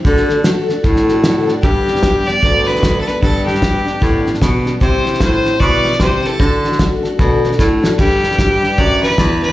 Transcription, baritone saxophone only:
X:1
M:4/4
L:1/8
Q:"Swing" 1/4=151
K:G
V:1 name="Baritone saxophone" clef=bass
D,3 z A,,4 | G,,4 D,,4 | G,,4 A,,2 B,,2 | C,2 A,,2 B,,2 C,2 |
D,3 z B,,2 A,,2 | G,,2 G,,2 F,,2 E,,2 |]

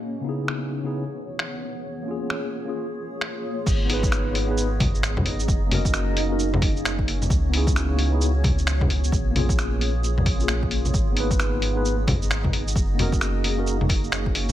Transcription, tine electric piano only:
X:1
M:4/4
L:1/16
Q:"Swing 16ths" 1/4=132
K:G#m
V:1 name="Tine electric piano"
z2 [C,B,DEG]4- [C,B,DEG] [C,B,DEG]2 z6 z | z2 [A,C^EG]4- [A,CEG] [A,CEG]2 z6 z | z2 [B,DGB]4- [B,DGB] [B,DGB]2 z6 z | z2 [A,CFA]4- [A,CFA] [A,CFA]2 z6 z |
z2 [B,DEG]4- [B,DEG] [B,DEG]2 z6 z | z2 [A,C^EG]4- [A,CEG] z4 [A,CEG]4- [A,CEG] | z2 [B,DGB]4- [B,DGB] [B,DGB]2 z6 z | z2 [A,CFA]4- [A,CFA] [A,CFA]2 z6 z |]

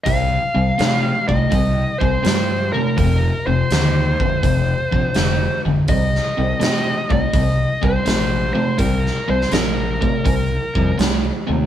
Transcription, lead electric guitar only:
X:1
M:4/4
L:1/8
Q:"Swing" 1/4=82
K:Cm
V:1 name="Lead electric guitar"
f3 e2 c2 B | B c6 z | e3 e2 c2 c | B c B4 z2 |]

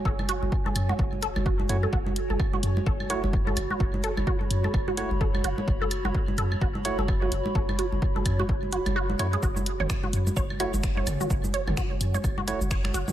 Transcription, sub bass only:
X:1
M:4/4
L:1/16
Q:"Swing 16ths" 1/4=128
K:F#m
V:1 name="Sub bass" clef=bass
F,,, z2 F,,, z2 F,, z F,,,2 z F,,,2 z F,, z | F,,, z2 F,,, z2 F,, z F,,,2 z F,,,2 z F,,, z | F,,, z2 F,,, z2 F,, z F,,,2 z F,,,2 z F,,, z | F,,, z2 F,,, z2 F,, z F,,,2 z F,,,2 z F,,, z |
F,,, z2 F,,, z2 F,, z F,,,2 z F,,,2 z F,, z | F,,, z2 F,,, z2 F,, z F,,,2 z F,,,2 z F,,, z | F,,, z2 F,,, z2 F,, z F,,,2 z F,,,2 z F,,, z |]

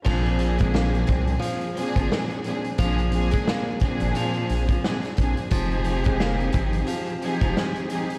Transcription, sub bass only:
X:1
M:4/4
L:1/16
Q:"Swing 16ths" 1/4=88
K:Bbmix
V:1 name="Sub bass" clef=bass
B,,,6 C,,2 z3 A,,, z4 | B,,,4 z3 A,,, z2 B,,,2 z2 B,,, z | F,,,6 A,,,2 z3 F,,, z4 |]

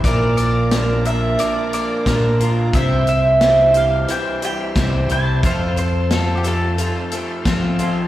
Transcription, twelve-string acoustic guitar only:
X:1
M:4/4
L:1/8
Q:1/4=89
K:C
V:1 name="Twelve-string acoustic guitar"
[_B,,D,F,_B,D_B] [F,B,DB] [B,,D,F,B,DB] [F,B,DB] [F,B,DB] [F,B,DB] [B,,D,F,B,DB] [F,B,DB] | [C,G,CEc] [CEc] [C,G,CEc] [Cc] [G,CEc] [CEc] [C,G,CEc] [CEc] | [F,CFA] [CFA] [F,CFA] [CFA] [F,CFA] [CFA] [F,CFA] [CFA] |]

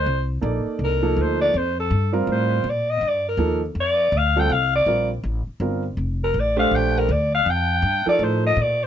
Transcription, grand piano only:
X:1
M:4/4
L:1/8
Q:"Swing" 1/4=162
K:Cdor
V:1 name="Grand piano"
z2 [B,EAd]3 [F,B,EA]3 | z3 [G,CFB]3 z2 | z2 [F,B,EA] z4 [G,CFA] | z2 [G,CFB] z3 [G,CFB] z |
z3 [A,DGc]3 z2 | z3 [F,EAB]3 z2 |]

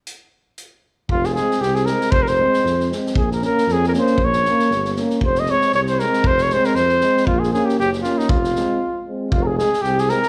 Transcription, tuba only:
X:1
M:2/4
L:1/8
Q:"Swing 16ths" 1/4=117
K:Fm
V:1 name="Tuba" clef=bass
z4 | F,,,2 C,,2 | F,,,2 F,,2 | B,,,2 F,,2 |
B,,,2 G,,,2 | F,,,2 C,,2 | F,,,2 F,,2 | B,,,2 _G,,,2 |
F,,,2 z2 | F,,,2 C,,2 |]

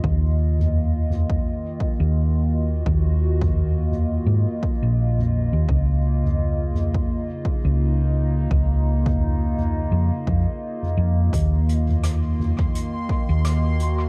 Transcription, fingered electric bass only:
X:1
M:4/4
L:1/16
Q:"Swing 16ths" 1/4=85
K:Ebdor
V:1 name="Fingered electric bass" clef=bass
E,,8 z3 E,,4- E,, | E,,8 A,, z2 B,,,4 E,, | D,,8 z3 D,,4- D,, | D,,8 F,, z F,, z3 F,,2 |
E,,8 z3 E,,4- E,, |]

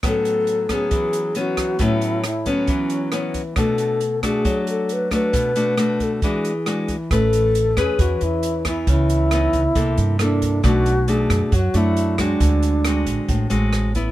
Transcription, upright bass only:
X:1
M:4/4
L:1/16
Q:1/4=136
K:A
V:1 name="Upright bass" clef=bass
z16 | z16 | z16 | z16 |
A,,,6 E,, z E,,2 E,,6 | C,,6 C,, z =C,,2 =G,,6 | B,,,6 F,, z F,,2 F,,6 | D,,6 A,,, z A,,,2 A,,,6 |]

